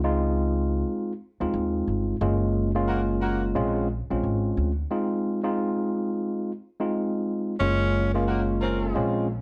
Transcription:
0.00 0.82 C#2 loud
0.04 1.11 G#3 loud
0.04 1.12 C4 medium
0.04 1.12 D#4 loud
0.04 1.12 F4 loud
1.40 1.51 D#2 medium
1.40 2.15 G#3 medium
1.40 2.15 C4 medium
1.40 2.16 D#4 medium
1.40 2.16 F4 loud
1.54 1.80 D#2 loud
1.87 2.14 G1 medium
2.21 3.52 F#1 loud
2.21 2.71 G#3 loud
2.21 2.71 A#3 medium
2.21 2.71 C#4 medium
2.21 2.71 F4 loud
2.75 3.54 G#3 loud
2.75 3.55 A#3 medium
2.75 3.54 C#4 medium
2.75 3.55 F4 loud
2.88 3.01 A#3 medium
2.88 3.01 F#4 loud
2.88 3.01 A#4 loud
3.21 3.43 A#3 loud
3.21 3.43 F#4 loud
3.21 3.43 A#4 loud
3.55 4.00 A#1 loud
3.55 3.87 G#3 loud
3.55 3.87 C4 medium
3.55 3.87 C#4 medium
3.55 3.87 F4 loud
4.10 4.21 A#1 medium
4.10 4.71 G#3 medium
4.10 4.71 C4 medium
4.10 4.71 C#4 medium
4.10 4.71 F4 loud
4.23 4.50 G#1 medium
4.57 4.84 D2 loud
4.91 5.40 G#3 loud
4.91 5.40 C4 medium
4.91 5.40 D#4 medium
4.91 5.40 F4 loud
5.43 6.51 G#3 loud
5.43 6.51 C4 medium
5.43 6.51 D#4 loud
5.43 6.51 F4 loud
6.80 7.55 G#3 loud
6.80 7.55 C4 medium
6.80 7.55 D#4 medium
6.80 7.55 F4 loud
7.60 8.91 F#1 loud
7.60 8.10 G#3 loud
7.60 8.10 A#3 medium
7.60 8.11 C#4 loud
7.60 8.10 C#4 medium
7.60 8.10 F4 loud
8.14 8.93 G#3 medium
8.14 8.25 A#3 medium
8.14 8.95 A#3 medium
8.14 8.94 C#4 medium
8.14 8.94 F4 loud
8.28 8.41 A#3 loud
8.28 8.41 F#4 loud
8.28 8.41 A#4 loud
8.61 8.80 C4 medium
8.61 9.07 C#4 loud
8.61 9.07 F4 loud
8.61 9.07 A#4 loud
8.95 9.39 A#1 loud
8.95 9.26 G#3 loud
8.95 9.26 C4 medium
8.95 9.27 C#4 medium
8.95 9.27 F4 loud

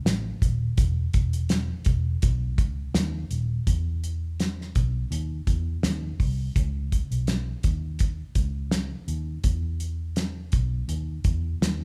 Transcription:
0.05 0.34 A1 medium
0.05 snare loud
0.05 closed hi-hat medium
0.42 0.71 D#1 medium
0.42 kick medium
0.42 closed hi-hat medium
0.77 1.06 E1 loud
0.77 kick loud
0.77 closed hi-hat medium
1.13 1.72 E1 medium
1.13 kick medium
1.13 closed hi-hat medium
1.33 closed hi-hat medium
1.49 snare loud
1.49 closed hi-hat medium
1.85 2.15 E1 loud
1.85 kick loud
1.85 closed hi-hat medium
2.22 2.58 B1 medium
2.22 kick loud
2.22 closed hi-hat medium
2.58 2.87 C#2 medium
2.58 kick medium
2.58 closed hi-hat medium
2.94 3.23 D#2 medium
2.94 snare loud
2.94 closed hi-hat loud
3.31 3.60 D#1 medium
3.31 closed hi-hat medium
3.67 4.71 E2 medium
3.67 kick medium
3.67 closed hi-hat medium
4.04 closed hi-hat medium
4.40 snare medium
4.40 closed hi-hat medium
4.61 snare soft
4.75 5.04 B1 loud
4.75 kick medium
4.75 closed hi-hat medium
5.11 5.40 D#2 medium
5.11 closed hi-hat medium
5.47 5.76 E2 medium
5.47 kick medium
5.47 closed hi-hat medium
5.83 6.12 D#2 medium
5.83 snare loud
5.83 closed hi-hat medium
6.20 6.49 C2 medium
6.20 kick medium
6.20 open hi-hat soft
6.56 7.01 C#2 loud
6.56 kick loud
6.56 closed hi-hat medium
6.92 kick medium
6.92 closed hi-hat medium
7.11 7.53 B1 medium
7.11 closed hi-hat medium
7.27 snare loud
7.27 closed hi-hat medium
7.63 8.22 D#2 medium
7.63 kick medium
7.63 closed hi-hat medium
7.99 kick medium
7.99 closed hi-hat medium
8.35 8.94 C#2 medium
8.35 kick medium
8.35 closed hi-hat medium
8.71 snare loud
8.71 closed hi-hat medium
9.08 9.37 D#2 medium
9.08 closed hi-hat medium
9.44 10.49 E2 medium
9.44 kick loud
9.44 closed hi-hat medium
9.80 closed hi-hat medium
10.16 snare medium
10.16 closed hi-hat medium
10.52 10.82 B1 loud
10.52 kick medium
10.52 closed hi-hat medium
10.88 11.18 D#2 medium
10.88 closed hi-hat medium
11.24 11.54 E2 medium
11.24 kick medium
11.24 closed hi-hat medium
11.61 11.84 D#2 medium
11.61 snare loud
11.61 closed hi-hat medium

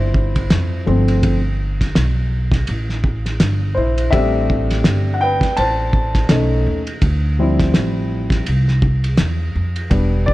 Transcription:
0.00 0.48 G1 loud
0.00 0.82 F3 medium
0.00 0.83 G3 soft
0.00 0.83 C4 soft
0.00 0.83 E4 medium
0.00 0.82 C5 medium
0.14 kick medium
0.36 kick medium
0.36 ride medium
0.50 0.86 F2 loud
0.50 snare loud
0.50 hi-hat pedal medium
0.50 ride medium
0.86 1.92 G1 loud
0.86 1.37 F3 medium
0.86 1.37 A3 soft
0.86 1.38 C4 medium
1.08 ride soft
1.23 kick loud
1.23 ride medium
1.81 kick medium
1.81 snare soft
1.81 ride medium
1.95 2.65 B1 loud
1.95 snare medium
1.95 hi-hat pedal soft
1.95 ride medium
2.52 kick medium
2.52 snare soft
2.52 ride medium
2.67 3.37 A1 medium
2.67 ride medium
2.89 snare soft
3.04 kick loud
3.26 snare soft
3.26 ride medium
3.40 3.75 G1 loud
3.40 snare loud
3.40 hi-hat pedal medium
3.40 ride medium
3.75 4.11 A#1 medium
3.75 4.11 E4 medium
3.75 4.13 C5 medium
3.98 ride medium
4.11 4.81 A1 loud
4.11 6.25 G3 medium
4.11 6.25 A3 medium
4.11 6.25 C4 soft
4.11 6.26 D4 medium
4.11 5.11 G4 medium
4.11 5.17 E5 medium
4.11 kick loud
4.11 ride medium
4.50 kick medium
4.71 snare soft
4.71 ride medium
4.84 5.40 G1 loud
4.84 snare loud
4.84 hi-hat pedal soft
4.84 ride medium
5.14 5.20 F#5 medium
5.21 5.56 B4 medium
5.21 5.58 G5 loud
5.41 muted upright bass stroke soft
5.41 kick medium
5.41 snare soft
5.41 ride medium
5.57 6.26 A1 medium
5.57 6.62 C5 medium
5.57 6.61 A5 loud
5.57 ride medium
5.93 kick loud
6.15 kick medium
6.15 snare soft
6.15 ride medium
6.29 6.64 B1 loud
6.29 6.80 A3 medium
6.29 6.80 C#4 medium
6.29 6.81 D#4 medium
6.29 snare loud
6.29 hi-hat pedal medium
6.29 ride medium
6.67 7.00 D#2 medium
6.87 ride medium
7.02 7.70 D2 loud
7.02 kick loud
7.02 ride medium
7.39 8.43 F3 medium
7.39 8.43 G3 medium
7.39 8.43 C4 soft
7.39 8.43 E4 medium
7.60 kick medium
7.60 snare soft
7.60 ride medium
7.74 8.44 A1 medium
7.74 snare medium
7.74 hi-hat pedal soft
7.74 ride medium
8.30 kick medium
8.30 snare soft
8.30 ride medium
8.46 9.16 C2 medium
8.46 ride medium
8.68 snare soft
8.82 kick medium
9.04 ride medium
9.17 9.54 E2 medium
9.17 snare loud
9.17 hi-hat pedal medium
9.17 ride medium
9.55 9.90 F2 medium
9.76 ride medium
9.90 10.34 E1 loud
9.90 10.34 G3 medium
9.90 10.34 B3 soft
9.90 10.34 D4 medium
9.90 kick loud
9.90 ride medium
10.26 10.34 D5 medium
10.26 kick medium

